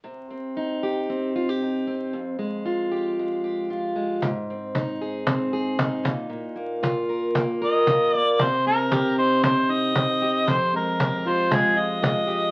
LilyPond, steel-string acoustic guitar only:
\new Staff \with { instrumentName = "Steel-string acoustic guitar" } { \time 4/4 \key c \minor \tempo 4 = 115 c8 c'8 ees'8 g'8 c'8 f'16 g'16 ees'8 c'8 | f,8 aes8 f'8 g'8 aes8 g'8 f'8 aes8 | aes,8 c'8 ees'8 aes'8 c'8 aes'8 ees'8 bes,8 | bes,8 bes8 f'8 bes'8 bes8 bes'4 bes8 |
c8 c'8 g'8 ees'8 c'8 ees'8 c'8 g'8 | f,8 aes8 g'8 f'8 aes8 f'8 aes8 g'8 | }